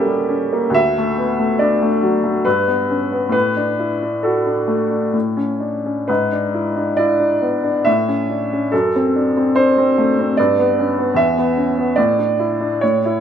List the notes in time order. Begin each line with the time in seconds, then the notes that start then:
Already playing: D2 G3 A#3 C#4 G4 A4 E5 F#5
0.06 G3
0.29 C#4
0.53 A#3
0.70 D2
0.74 E5
0.98 A3
1.18 B3
1.39 A3
1.59 D4 D5
1.82 A3
2.03 F#3
2.24 A3
2.45 G2 B4
2.68 B3
2.90 C#4
3.12 B3
3.29 A2 B4
3.57 D4
3.79 E4
4.03 D4
4.23 F#4 A4
4.46 D4
4.68 A3
4.90 D4
5.13 A2
5.37 C#4
5.60 D4
5.86 C#4
6.08 G#2 B4
6.32 D4
6.54 E4
6.76 D4
6.97 E4 D5
7.20 D4
7.42 B3
7.64 D4
7.85 A2 E5
8.08 C#4
8.30 D4
8.53 C#4
8.72 F#2 A4
8.96 C4
9.16 D4
9.37 C4
9.56 D4 C5
9.78 C4
9.98 A3
10.19 C4
10.37 G2 D5
10.59 B3
10.79 C#4
10.99 B3
11.14 E2 E5
11.38 B3
11.57 C#4
11.78 B3
11.96 A2 D5
12.19 D4
12.39 E4
12.61 D4
12.81 A2 C#5
13.06 E4